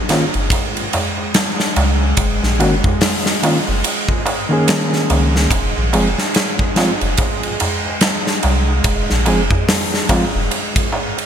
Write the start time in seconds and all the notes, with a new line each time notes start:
Already playing: G#3
0.09 D#3 A#3 C#4 F4, snare, ride, darbuka tek
0.34 F#1, ride, darbuka tek
0.50 kick, ride, darbuka tek
0.77 ride, darbuka tek
0.93 ride, darbuka tek, darbuka dum
1.18 darbuka tek
1.34 snare, ride, darbuka tek
1.59 snare, darbuka tek
1.76 C#2, ride, darbuka tek
2.01 darbuka tek
2.17 F#1, kick, ride, darbuka tek
2.43 A#1, snare, darbuka tek
2.59 F#1 D#3 A#3 C#4 F#4, ride, darbuka tek
2.84 kick, darbuka tek, darbuka dum
3.01 snare, open hi-hat, darbuka tek
3.26 snare, darbuka tek
3.43 D#3 A#3 C#4 F4, ride, darbuka tek
3.68 F#1, darbuka tek
3.84 ride, darbuka tek
4.09 kick, darbuka tek
4.26 ride, darbuka tek
4.49 D#3 A#3 C#4 G#4, darbuka tek
4.67 snare, ride, darbuka tek
4.93 snare, darbuka tek
5.10 C#2, ride, darbuka tek
5.35 snare, darbuka tek
5.51 F1, kick, ride, darbuka tek
5.77 A#1, darbuka tek
5.93 F1 F3 G#3 C4 G#4, ride, darbuka tek
6.18 snare, darbuka tek
6.34 snare, ride, darbuka tek
6.59 kick, darbuka tek
6.75 F3 G#3 C4 F4, snare, ride, darbuka tek
7.01 F1, ride, darbuka tek
7.17 kick, ride, darbuka tek
7.43 ride, darbuka tek
7.60 ride, darbuka tek, darbuka dum
7.86 darbuka tek
8.01 snare, ride, darbuka tek
8.27 snare, darbuka tek
8.43 C2, ride, darbuka tek
8.68 darbuka tek
8.84 F1, kick, ride, darbuka tek
9.10 A#1, snare, darbuka tek
9.26 F1 F3 G#3 C4 G#4, ride, darbuka tek
9.51 kick, darbuka tek, darbuka dum
9.68 snare, open hi-hat, darbuka tek
9.93 snare, darbuka tek
10.09 F3 G#3 C4 F4, kick, ride, darbuka tek
10.35 F1, darbuka tek
10.51 ride, darbuka tek
10.76 kick, ride, darbuka tek
10.92 darbuka tek
11.18 ride, darbuka tek